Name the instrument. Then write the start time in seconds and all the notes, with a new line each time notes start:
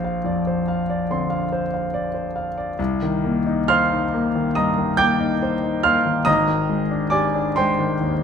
grand piano
Already playing: A#1 C5 F5 C6
0.04 F5
0.25 F2 D5
0.47 C5
0.68 F5
0.90 D5
1.10 D3 C4 C6
1.30 F5
1.52 C5
1.74 F5
1.94 D5
2.14 C5
2.36 F5
2.58 D5
2.79 C2
3.02 D#3
3.24 A#3
3.46 D#4
3.68 C5 F5 C6 F6
3.92 D#4
4.14 A#3
4.35 D#3
4.55 G2 D#5 A#5 D#6
4.78 D#3
4.97 A#3 G5 D6 G6
5.20 D#4
5.42 C5
5.63 D#4
5.83 A#3 F5 C6 F6
6.06 D#3
6.25 G#1 D#5 A#5 D#6
6.48 D#3
6.69 G#3
6.91 D4
7.10 G4 D5 G#5 D6
7.34 D4
7.56 G#3 C5 G5 C6
7.79 D#3
8.00 D#2